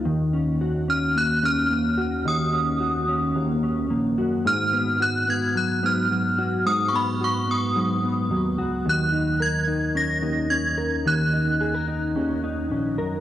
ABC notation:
X:1
M:4/4
L:1/16
Q:1/4=109
K:D#m
V:1 name="Synth bell"
z6 e'2 f'2 e'6 | d'8 z8 | e'4 f'2 g'2 f'2 e'6 | d'3/2 c'/2 b2 c'2 d'8 z2 |
f'4 g'4 a'4 g'4 | f'8 z8 |]
V:2 name="Clean electric guitar"
D,2 C2 F2 C2 A,2 C2 A,2 F2 | D,2 C2 F2 C2 A,2 C2 A,2 F2 | G,,2 B,2 F2 B,2 F,2 B,2 F,2 F2 | G,,2 B,2 F2 B,2 F,2 B,2 F,2 F2 |
D,2 D2 A2 D2 C2 D2 C2 A2 | D,2 D2 G A D2 C2 D2 C2 A2 |]
V:3 name="Tine electric piano" clef=bass
D,,8- D,,2 D,,6 | D,,8 D,,4 A,,,2 F,,2 | G,,8- G,,2 G,,6 | G,,8 G,,4 D,,2 C,,2 |
D,,8- D,,2 D,,6 | D,,8 D,,4 A,,,2 F,,2 |]